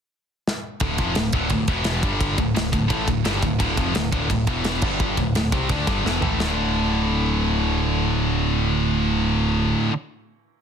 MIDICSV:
0, 0, Header, 1, 4, 480
1, 0, Start_track
1, 0, Key_signature, -1, "minor"
1, 0, Tempo, 347625
1, 1127, Time_signature, 4, 2, 24, 8
1, 14654, End_track
2, 0, Start_track
2, 0, Title_t, "Distorted electric guitar"
2, 0, Program_c, 0, 30
2, 1114, Note_on_c, 0, 38, 107
2, 1125, Note_on_c, 0, 45, 108
2, 1127, Note_on_c, 0, 50, 115
2, 1354, Note_off_c, 0, 38, 0
2, 1359, Note_off_c, 0, 45, 0
2, 1360, Note_off_c, 0, 50, 0
2, 1364, Note_on_c, 0, 41, 91
2, 1368, Note_on_c, 0, 48, 94
2, 1372, Note_on_c, 0, 53, 110
2, 1599, Note_off_c, 0, 41, 0
2, 1600, Note_off_c, 0, 48, 0
2, 1603, Note_off_c, 0, 53, 0
2, 1612, Note_on_c, 0, 45, 71
2, 1613, Note_on_c, 0, 38, 59
2, 1802, Note_off_c, 0, 45, 0
2, 1803, Note_off_c, 0, 38, 0
2, 1844, Note_on_c, 0, 38, 93
2, 1854, Note_on_c, 0, 50, 96
2, 1856, Note_on_c, 0, 45, 93
2, 2073, Note_off_c, 0, 38, 0
2, 2084, Note_off_c, 0, 50, 0
2, 2085, Note_off_c, 0, 45, 0
2, 2090, Note_on_c, 0, 38, 65
2, 2102, Note_on_c, 0, 45, 71
2, 2281, Note_off_c, 0, 38, 0
2, 2287, Note_off_c, 0, 45, 0
2, 2322, Note_on_c, 0, 40, 98
2, 2329, Note_on_c, 0, 47, 104
2, 2337, Note_on_c, 0, 52, 112
2, 2799, Note_off_c, 0, 40, 0
2, 2803, Note_off_c, 0, 47, 0
2, 2804, Note_on_c, 0, 43, 80
2, 2807, Note_off_c, 0, 52, 0
2, 2813, Note_on_c, 0, 50, 96
2, 2816, Note_on_c, 0, 55, 98
2, 3281, Note_off_c, 0, 43, 0
2, 3285, Note_off_c, 0, 50, 0
2, 3287, Note_off_c, 0, 55, 0
2, 3289, Note_on_c, 0, 38, 64
2, 3294, Note_on_c, 0, 45, 77
2, 3483, Note_off_c, 0, 38, 0
2, 3486, Note_off_c, 0, 45, 0
2, 3519, Note_on_c, 0, 38, 69
2, 3531, Note_on_c, 0, 45, 72
2, 3718, Note_off_c, 0, 38, 0
2, 3724, Note_off_c, 0, 45, 0
2, 3762, Note_on_c, 0, 38, 64
2, 3775, Note_on_c, 0, 45, 67
2, 3960, Note_off_c, 0, 38, 0
2, 3960, Note_off_c, 0, 45, 0
2, 3977, Note_on_c, 0, 45, 96
2, 3989, Note_on_c, 0, 52, 100
2, 4000, Note_on_c, 0, 57, 103
2, 4220, Note_off_c, 0, 45, 0
2, 4231, Note_off_c, 0, 52, 0
2, 4235, Note_on_c, 0, 38, 71
2, 4237, Note_on_c, 0, 45, 80
2, 4241, Note_off_c, 0, 57, 0
2, 4438, Note_off_c, 0, 38, 0
2, 4439, Note_off_c, 0, 45, 0
2, 4481, Note_on_c, 0, 43, 99
2, 4483, Note_on_c, 0, 50, 108
2, 4491, Note_on_c, 0, 55, 102
2, 4722, Note_off_c, 0, 43, 0
2, 4723, Note_off_c, 0, 50, 0
2, 4728, Note_off_c, 0, 55, 0
2, 4735, Note_on_c, 0, 38, 61
2, 4739, Note_on_c, 0, 45, 70
2, 4929, Note_off_c, 0, 38, 0
2, 4931, Note_off_c, 0, 45, 0
2, 4957, Note_on_c, 0, 38, 91
2, 4962, Note_on_c, 0, 45, 93
2, 4972, Note_on_c, 0, 50, 104
2, 5202, Note_off_c, 0, 38, 0
2, 5204, Note_off_c, 0, 45, 0
2, 5209, Note_off_c, 0, 50, 0
2, 5209, Note_on_c, 0, 41, 100
2, 5219, Note_on_c, 0, 48, 102
2, 5226, Note_on_c, 0, 53, 99
2, 5442, Note_off_c, 0, 41, 0
2, 5448, Note_on_c, 0, 38, 70
2, 5453, Note_off_c, 0, 48, 0
2, 5457, Note_off_c, 0, 53, 0
2, 5458, Note_on_c, 0, 45, 71
2, 5647, Note_off_c, 0, 38, 0
2, 5652, Note_off_c, 0, 45, 0
2, 5693, Note_on_c, 0, 38, 99
2, 5702, Note_on_c, 0, 45, 91
2, 5704, Note_on_c, 0, 50, 114
2, 5918, Note_off_c, 0, 38, 0
2, 5927, Note_off_c, 0, 45, 0
2, 5935, Note_on_c, 0, 38, 59
2, 5937, Note_off_c, 0, 50, 0
2, 5943, Note_on_c, 0, 45, 72
2, 6132, Note_off_c, 0, 38, 0
2, 6136, Note_off_c, 0, 45, 0
2, 6181, Note_on_c, 0, 40, 95
2, 6191, Note_on_c, 0, 47, 92
2, 6205, Note_on_c, 0, 52, 113
2, 6657, Note_off_c, 0, 40, 0
2, 6662, Note_off_c, 0, 47, 0
2, 6669, Note_off_c, 0, 52, 0
2, 6675, Note_on_c, 0, 43, 99
2, 6675, Note_on_c, 0, 50, 93
2, 6685, Note_on_c, 0, 55, 93
2, 7145, Note_off_c, 0, 43, 0
2, 7145, Note_off_c, 0, 50, 0
2, 7150, Note_off_c, 0, 55, 0
2, 7155, Note_on_c, 0, 38, 62
2, 7163, Note_on_c, 0, 45, 67
2, 7344, Note_off_c, 0, 38, 0
2, 7348, Note_off_c, 0, 45, 0
2, 7393, Note_on_c, 0, 38, 68
2, 7399, Note_on_c, 0, 45, 76
2, 7584, Note_off_c, 0, 38, 0
2, 7586, Note_off_c, 0, 45, 0
2, 7628, Note_on_c, 0, 48, 94
2, 7641, Note_on_c, 0, 55, 90
2, 7641, Note_on_c, 0, 60, 101
2, 7861, Note_off_c, 0, 55, 0
2, 7862, Note_off_c, 0, 48, 0
2, 7867, Note_off_c, 0, 60, 0
2, 7867, Note_on_c, 0, 50, 93
2, 7872, Note_on_c, 0, 57, 88
2, 7881, Note_on_c, 0, 62, 98
2, 8093, Note_off_c, 0, 50, 0
2, 8098, Note_on_c, 0, 43, 100
2, 8104, Note_off_c, 0, 57, 0
2, 8109, Note_off_c, 0, 62, 0
2, 8109, Note_on_c, 0, 50, 104
2, 8119, Note_on_c, 0, 55, 106
2, 8337, Note_off_c, 0, 43, 0
2, 8343, Note_off_c, 0, 50, 0
2, 8348, Note_off_c, 0, 55, 0
2, 8348, Note_on_c, 0, 40, 90
2, 8359, Note_on_c, 0, 47, 96
2, 8363, Note_on_c, 0, 52, 109
2, 8571, Note_off_c, 0, 40, 0
2, 8571, Note_off_c, 0, 52, 0
2, 8577, Note_on_c, 0, 45, 85
2, 8582, Note_off_c, 0, 47, 0
2, 8585, Note_on_c, 0, 57, 91
2, 8587, Note_on_c, 0, 52, 97
2, 8810, Note_off_c, 0, 45, 0
2, 8816, Note_on_c, 0, 38, 100
2, 8821, Note_off_c, 0, 57, 0
2, 8822, Note_off_c, 0, 52, 0
2, 8852, Note_on_c, 0, 45, 100
2, 8869, Note_on_c, 0, 50, 99
2, 13649, Note_off_c, 0, 38, 0
2, 13685, Note_off_c, 0, 45, 0
2, 13702, Note_off_c, 0, 50, 0
2, 14654, End_track
3, 0, Start_track
3, 0, Title_t, "Picked electric bass"
3, 0, Program_c, 1, 34
3, 1116, Note_on_c, 1, 26, 95
3, 1344, Note_off_c, 1, 26, 0
3, 1358, Note_on_c, 1, 29, 96
3, 1586, Note_off_c, 1, 29, 0
3, 1600, Note_on_c, 1, 26, 83
3, 1827, Note_off_c, 1, 26, 0
3, 1835, Note_on_c, 1, 26, 89
3, 2065, Note_off_c, 1, 26, 0
3, 2074, Note_on_c, 1, 26, 77
3, 2304, Note_off_c, 1, 26, 0
3, 2312, Note_on_c, 1, 28, 86
3, 2767, Note_off_c, 1, 28, 0
3, 2801, Note_on_c, 1, 31, 94
3, 3253, Note_off_c, 1, 31, 0
3, 3281, Note_on_c, 1, 26, 86
3, 3503, Note_off_c, 1, 26, 0
3, 3511, Note_on_c, 1, 26, 78
3, 3745, Note_off_c, 1, 26, 0
3, 3764, Note_on_c, 1, 26, 74
3, 3993, Note_off_c, 1, 26, 0
3, 4000, Note_on_c, 1, 33, 97
3, 4231, Note_off_c, 1, 33, 0
3, 4242, Note_on_c, 1, 26, 81
3, 4472, Note_off_c, 1, 26, 0
3, 4481, Note_on_c, 1, 31, 88
3, 4712, Note_off_c, 1, 31, 0
3, 4735, Note_on_c, 1, 26, 85
3, 4960, Note_off_c, 1, 26, 0
3, 4968, Note_on_c, 1, 26, 100
3, 5197, Note_off_c, 1, 26, 0
3, 5211, Note_on_c, 1, 29, 108
3, 5439, Note_off_c, 1, 29, 0
3, 5454, Note_on_c, 1, 26, 75
3, 5681, Note_off_c, 1, 26, 0
3, 5692, Note_on_c, 1, 26, 98
3, 5921, Note_off_c, 1, 26, 0
3, 5935, Note_on_c, 1, 26, 86
3, 6163, Note_off_c, 1, 26, 0
3, 6170, Note_on_c, 1, 28, 88
3, 6625, Note_off_c, 1, 28, 0
3, 6657, Note_on_c, 1, 31, 91
3, 7109, Note_off_c, 1, 31, 0
3, 7146, Note_on_c, 1, 26, 89
3, 7371, Note_off_c, 1, 26, 0
3, 7393, Note_on_c, 1, 26, 78
3, 7615, Note_off_c, 1, 26, 0
3, 7621, Note_on_c, 1, 36, 90
3, 7848, Note_off_c, 1, 36, 0
3, 7865, Note_on_c, 1, 38, 92
3, 8091, Note_off_c, 1, 38, 0
3, 8110, Note_on_c, 1, 31, 82
3, 8334, Note_off_c, 1, 31, 0
3, 8349, Note_on_c, 1, 28, 90
3, 8570, Note_off_c, 1, 28, 0
3, 8578, Note_on_c, 1, 33, 96
3, 8807, Note_off_c, 1, 33, 0
3, 8825, Note_on_c, 1, 26, 92
3, 13439, Note_off_c, 1, 26, 0
3, 14654, End_track
4, 0, Start_track
4, 0, Title_t, "Drums"
4, 656, Note_on_c, 9, 38, 74
4, 794, Note_off_c, 9, 38, 0
4, 1104, Note_on_c, 9, 51, 94
4, 1118, Note_on_c, 9, 36, 106
4, 1242, Note_off_c, 9, 51, 0
4, 1256, Note_off_c, 9, 36, 0
4, 1355, Note_on_c, 9, 51, 78
4, 1361, Note_on_c, 9, 36, 102
4, 1493, Note_off_c, 9, 51, 0
4, 1499, Note_off_c, 9, 36, 0
4, 1591, Note_on_c, 9, 51, 104
4, 1602, Note_on_c, 9, 38, 114
4, 1729, Note_off_c, 9, 51, 0
4, 1740, Note_off_c, 9, 38, 0
4, 1829, Note_on_c, 9, 51, 76
4, 1839, Note_on_c, 9, 36, 109
4, 1967, Note_off_c, 9, 51, 0
4, 1977, Note_off_c, 9, 36, 0
4, 2064, Note_on_c, 9, 51, 102
4, 2076, Note_on_c, 9, 36, 89
4, 2203, Note_off_c, 9, 51, 0
4, 2214, Note_off_c, 9, 36, 0
4, 2314, Note_on_c, 9, 51, 82
4, 2319, Note_on_c, 9, 36, 112
4, 2453, Note_off_c, 9, 51, 0
4, 2457, Note_off_c, 9, 36, 0
4, 2544, Note_on_c, 9, 51, 108
4, 2555, Note_on_c, 9, 38, 116
4, 2682, Note_off_c, 9, 51, 0
4, 2693, Note_off_c, 9, 38, 0
4, 2802, Note_on_c, 9, 36, 106
4, 2803, Note_on_c, 9, 51, 76
4, 2940, Note_off_c, 9, 36, 0
4, 2941, Note_off_c, 9, 51, 0
4, 3045, Note_on_c, 9, 36, 105
4, 3049, Note_on_c, 9, 51, 103
4, 3183, Note_off_c, 9, 36, 0
4, 3187, Note_off_c, 9, 51, 0
4, 3287, Note_on_c, 9, 36, 92
4, 3288, Note_on_c, 9, 51, 74
4, 3425, Note_off_c, 9, 36, 0
4, 3426, Note_off_c, 9, 51, 0
4, 3538, Note_on_c, 9, 51, 99
4, 3549, Note_on_c, 9, 38, 111
4, 3676, Note_off_c, 9, 51, 0
4, 3687, Note_off_c, 9, 38, 0
4, 3769, Note_on_c, 9, 36, 91
4, 3776, Note_on_c, 9, 51, 68
4, 3907, Note_off_c, 9, 36, 0
4, 3914, Note_off_c, 9, 51, 0
4, 4006, Note_on_c, 9, 36, 103
4, 4006, Note_on_c, 9, 51, 101
4, 4144, Note_off_c, 9, 36, 0
4, 4144, Note_off_c, 9, 51, 0
4, 4248, Note_on_c, 9, 36, 101
4, 4252, Note_on_c, 9, 51, 74
4, 4386, Note_off_c, 9, 36, 0
4, 4390, Note_off_c, 9, 51, 0
4, 4487, Note_on_c, 9, 51, 100
4, 4498, Note_on_c, 9, 38, 117
4, 4625, Note_off_c, 9, 51, 0
4, 4636, Note_off_c, 9, 38, 0
4, 4729, Note_on_c, 9, 36, 90
4, 4733, Note_on_c, 9, 51, 72
4, 4867, Note_off_c, 9, 36, 0
4, 4871, Note_off_c, 9, 51, 0
4, 4969, Note_on_c, 9, 36, 103
4, 4972, Note_on_c, 9, 51, 101
4, 5107, Note_off_c, 9, 36, 0
4, 5110, Note_off_c, 9, 51, 0
4, 5211, Note_on_c, 9, 36, 106
4, 5213, Note_on_c, 9, 51, 70
4, 5349, Note_off_c, 9, 36, 0
4, 5351, Note_off_c, 9, 51, 0
4, 5452, Note_on_c, 9, 51, 102
4, 5463, Note_on_c, 9, 38, 113
4, 5590, Note_off_c, 9, 51, 0
4, 5601, Note_off_c, 9, 38, 0
4, 5696, Note_on_c, 9, 36, 103
4, 5697, Note_on_c, 9, 51, 74
4, 5834, Note_off_c, 9, 36, 0
4, 5836, Note_off_c, 9, 51, 0
4, 5936, Note_on_c, 9, 36, 90
4, 5944, Note_on_c, 9, 51, 103
4, 6074, Note_off_c, 9, 36, 0
4, 6082, Note_off_c, 9, 51, 0
4, 6173, Note_on_c, 9, 51, 83
4, 6176, Note_on_c, 9, 36, 120
4, 6311, Note_off_c, 9, 51, 0
4, 6314, Note_off_c, 9, 36, 0
4, 6412, Note_on_c, 9, 51, 111
4, 6423, Note_on_c, 9, 38, 122
4, 6550, Note_off_c, 9, 51, 0
4, 6561, Note_off_c, 9, 38, 0
4, 6648, Note_on_c, 9, 49, 100
4, 6659, Note_on_c, 9, 36, 112
4, 6786, Note_off_c, 9, 49, 0
4, 6797, Note_off_c, 9, 36, 0
4, 6903, Note_on_c, 9, 36, 115
4, 7042, Note_off_c, 9, 36, 0
4, 7143, Note_on_c, 9, 51, 73
4, 7144, Note_on_c, 9, 36, 84
4, 7281, Note_off_c, 9, 51, 0
4, 7282, Note_off_c, 9, 36, 0
4, 7390, Note_on_c, 9, 51, 104
4, 7401, Note_on_c, 9, 38, 123
4, 7528, Note_off_c, 9, 51, 0
4, 7539, Note_off_c, 9, 38, 0
4, 7627, Note_on_c, 9, 36, 116
4, 7627, Note_on_c, 9, 51, 80
4, 7765, Note_off_c, 9, 36, 0
4, 7765, Note_off_c, 9, 51, 0
4, 7860, Note_on_c, 9, 51, 101
4, 7864, Note_on_c, 9, 36, 106
4, 7998, Note_off_c, 9, 51, 0
4, 8003, Note_off_c, 9, 36, 0
4, 8109, Note_on_c, 9, 36, 115
4, 8111, Note_on_c, 9, 51, 72
4, 8248, Note_off_c, 9, 36, 0
4, 8249, Note_off_c, 9, 51, 0
4, 8371, Note_on_c, 9, 38, 64
4, 8509, Note_off_c, 9, 38, 0
4, 8592, Note_on_c, 9, 43, 86
4, 8730, Note_off_c, 9, 43, 0
4, 8840, Note_on_c, 9, 38, 106
4, 8978, Note_off_c, 9, 38, 0
4, 14654, End_track
0, 0, End_of_file